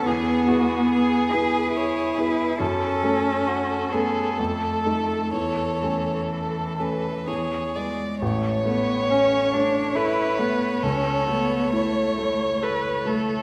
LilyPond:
<<
  \new Staff \with { instrumentName = "Violin" } { \time 3/4 \key a \major \tempo 4 = 68 gis'8 fis'8 gis'8 b'8 cis''8 b'8 | a'4 fis'8 gis'8 a'4 | cis''4 a'8 b'8 cis''8 d''8 | cis''2.~ |
cis''2. | }
  \new Staff \with { instrumentName = "Violin" } { \time 3/4 \key a \major gis'2. | a'2.~ | a'2 gis'4 | cis''2 b'4 |
a'4 cis''4 b'8 a'8 | }
  \new Staff \with { instrumentName = "Cello" } { \time 3/4 \key a \major b4. gis'8 e'4 | cis'4. b8 a4 | e2~ e8 gis8 | a8 b8 cis'8 d'8 e'8 b8 |
cis'8 b8 a4 r8 a8 | }
  \new Staff \with { instrumentName = "Grand piano" } { \time 3/4 \key a \major e,8 <b e' gis'>4 <b e' gis'>4 <b e' gis'>8 | fis,8 <a cis' a'>4 <a cis' a'>8 f,8 <a ees' a'>8 | e,8 <a cis' a'>4 <a cis' a'>8 e,8 <gis b b'>8 | a,,8 a8 cis'8 a8 a'8 a8 |
cis,8 a8 e'8 a8 a'8 a8 | }
>>